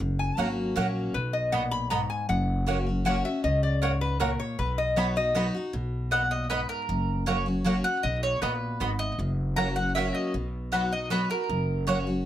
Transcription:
0.00 F#1 F#2
0.19 G#5
0.37 G#1 F#3 A#3 C#4 F#4 C#5 F#5 A#5
0.76 A#1 F#3 A#3 C#4 F#4 C#5 F#5
1.14 B1 B2 B4
1.33 D#5
1.52 A#2 B3 F#4 D#5 F#5 B5
1.71 B5
1.90 G#2 B3 F#4 D#5 A#5 B5
2.10 G#5
2.29 F#1 F#2 F#5
2.66 F#3 A#3 C#4 F#4 C#5 F#5
2.87 C#4 F#4
3.05 F#3 A#3 C#4 F#4 C#5 F#5
3.25 C#4 F#4 E5
3.44 C#2 C#3 D#5
3.63 D5
3.82 G#2 A#3 F#4 C#5 F#5
4.01 B4
4.20 A#2 A#3 F#4 A#4 C#5 F#5
4.40 C#5
4.59 B1 B2 B4
4.78 D#5
4.96 F#3 B3 D#4 F#4 C#5 D#5 B5
5.16 D#4 F#4 D#5
5.35 F#3 B3 D#4 F#4 D#5 B5
5.54 D#4 F#4
5.73 B1 B2
6.11 A#2 B3 F#4 D#5 F#5 B5
6.31 D#5
6.50 G#2 B3 F#4 B4 D#5 B5
6.69 A#4
6.89 F#1 F#2
7.26 F#3 A#3 C#4 F#4 C#5 F#5
7.46 C#4 F#4
7.64 F#3 A#3 C#4 F#4 C#5 F#5
7.84 C#4 F#4 F#5
8.03 B1 B2 D#5
8.23 C#5
8.42 A#1 A#2 B3 F#4 B4 D#5 B5
8.80 G#1 G#2 B3 F#4 D#5 B5
8.99 D#5
9.19 F#1 F#2
9.56 F#3 A#3 C#4 F#4 C#5 F#5 A#5
9.76 C#4 F#4 F#5
9.95 F#3 A#3 C#4 F#4 C#5 E5 F#5
10.15 D#5
10.34 B1 B2
10.72 F#3 B3 D#4 F#4 D#5 F#5 B5
10.92 D#4 F#4 D#5
11.10 F#3 B3 D#4 F#4 B4 D#5 B5
11.30 D#4 F#4 A#4
11.49 F#1 F#2
11.87 F#3 A#3 C#4 F#4 C#5 F#5
12.07 C#4 F#4

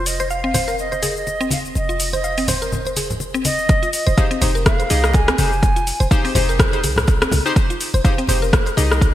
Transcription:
Already playing: F1
0.06 D#5, open hi-hat, shaker
0.20 C5, muted conga, shaker
0.30 F5, shaker
0.44 C4
0.54 C5, open hi-hat, muted conga, high conga, low conga, shaker
0.68 A#4, shaker
0.79 D#5, shaker
0.92 C5, muted conga, shaker
1.02 G#4, open hi-hat, high conga, shaker
1.17 D#5, shaker
1.27 muted conga, shaker
1.41 C4, shaker
1.51 F5, open hi-hat, high conga, shaker
1.65 shaker
1.75 F1 D#5, muted conga, shaker
1.89 F4, shaker
2.00 open hi-hat, shaker
2.13 C5 D#5, muted conga, shaker
2.24 F5, shaker
2.38 C4, open hi-hat, shaker
2.48 C5, open hi-hat, muted conga, high conga, low conga, shaker
2.62 A#4, shaker
2.72 high conga, low conga, shaker
2.85 C5, muted conga, shaker
2.96 G#4, open hi-hat, high conga, shaker
3.10 low conga, shaker
3.20 muted conga, shaker
3.34 C4, shaker
3.45 D#5, open hi-hat, high conga, shaker
3.58 shaker
3.69 kick, closed hi-hat, muted conga, shaker
3.83 F4, closed hi-hat, shaker
3.93 D#5, open hi-hat, shaker
4.06 F1 C5, muted conga, shaker
4.18 D#4 G4 G#4 C5 F5, kick, closed hi-hat, shaker
4.31 C4, closed hi-hat
4.41 F1 D#4 G4 G#4 C5, open hi-hat, muted conga, high conga, low conga, shaker
4.55 A#4, shaker
4.66 F5, kick, cross-stick, closed hi-hat, shaker
4.80 C5, closed hi-hat, muted conga, shaker
4.90 C2 D#4 G4 G#4 D#5, open hi-hat, high conga, shaker
5.04 cross-stick, shaker
5.13 G#5, kick, closed hi-hat, muted conga, shaker
5.28 C4, cross-stick, closed hi-hat, shaker
5.38 F1 D#4 G4 G#4 C5 G#5, open hi-hat, high conga, shaker
5.52 shaker
5.63 kick, closed hi-hat, muted conga, shaker
5.76 F4, closed hi-hat, shaker
5.87 open hi-hat, shaker
6.00 F1 C5, muted conga, shaker
6.11 D#4 G4 G#4 C5 F5, kick, closed hi-hat, shaker
6.25 C4, open hi-hat
6.35 F1 D#4 G4 G#4 C5, open hi-hat, muted conga, high conga, low conga, shaker
6.49 A#4, shaker
6.59 kick, cross-stick, closed hi-hat, high conga, low conga, shaker
6.73 D#4 G4 G#4 C5, closed hi-hat, muted conga, shaker
6.84 C2 G#4, open hi-hat, high conga, shaker
6.96 cross-stick, low conga, shaker
7.08 kick, closed hi-hat, muted conga, shaker
7.22 C4, cross-stick, closed hi-hat, shaker
7.32 C2, open hi-hat, high conga, shaker
7.46 D#4 G4 G#4 C5, shaker
7.56 kick, closed hi-hat, muted conga, shaker
7.70 F4, closed hi-hat, shaker
7.81 open hi-hat, shaker
7.94 F1 C5, muted conga, shaker
8.04 D#4 G4 G#4 C5 F5, kick, closed hi-hat, shaker
8.18 C4, closed hi-hat
8.27 F1 D#4 G4 G#4 C5, open hi-hat, muted conga, high conga, low conga, shaker
8.42 A#4, shaker
8.53 kick, cross-stick, closed hi-hat, shaker
8.66 C5, closed hi-hat, muted conga, shaker
8.77 C2 D#4 G4 G#4 D#5, open hi-hat, high conga, shaker
8.92 cross-stick, shaker
9.01 kick, closed hi-hat, muted conga, shaker

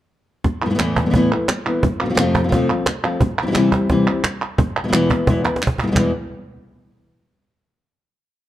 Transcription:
0.44 muted nylon-string guitar stroke, cajon bass, cajon slap
0.61 E3 A3 B3 E4
0.66 A2 E3 A3 B3 E4
0.70 A2 E3 A3 B3 E4
0.75 A2 E3 A3 B3 E4
0.79 E2 A2 E3 A3 B3 E4, cajon slap, clap
0.96 cajon bass
1.06 A2 E3 A3 B3 E4
1.10 A2 E3 A3 B3 E4, cajon bass
1.15 E2 A2 E3 A3 B3 E4
1.32 E3 A3 E4
1.48 muted nylon-string guitar stroke, cajon slap, clap
1.66 E3 A3 B3 E4, clap
1.83 muted nylon-string guitar stroke, cajon bass
2.01 C3 F3 A3 C4 F4
2.06 C3 F3 A3 C4 F4
2.10 C3 A3 C4 F4
2.15 F3 A3 C4 F4, cajon slap, clap
2.19 F2 C3 F3 A3 C4 F4
2.35 cajon bass
2.44 C3 F3 A3 C4 F4
2.48 C3 F3 A3 C4 F4, cajon bass
2.53 F2 C3 F3 A3 C4 F4
2.70 F3 A3 C4 F4
2.86 muted nylon-string guitar stroke, cajon slap, clap
3.04 F3 A3 C4 F4
3.21 muted nylon-string guitar stroke, cajon bass
3.42 E3 G3 C4 E4
3.47 E3 G3 C4 E4
3.51 E3 G3 C4 E4
3.55 C3 E3 G3 C4 E4, cajon slap, clap
3.72 G3 C4 E4, cajon bass, clap
3.90 C3 E3 G3 C4 E4, cajon bass, cajon slap
4.07 G3 C4 E4
4.24 muted nylon-string guitar stroke, cajon slap, clap
4.42 clap
4.58 muted nylon-string guitar stroke, cajon bass
4.84 B2 E3 G#3 B3 E4
4.88 B2 E3 G#3 B3 E4
4.93 E2 B2 E3 G#3 B3 E4, cajon slap, clap
5.10 E3 G#3 B3 E4, cajon bass
5.27 E2 B2 E3 G#3 B3 E4, cajon bass
5.44 E3 G#3 B3 E4, cajon slap
5.56 cajon slap
5.62 muted nylon-string guitar stroke, clap
5.67 cajon bass
5.78 cajon bass
5.83 B2 E3 G#3 B3 E4
5.87 B2 E3 G#3 B3 E4
5.92 B2 E3 G#3 B3 E4
5.96 E2 B2 E3 G#3 B3 E4, cajon bass, clap

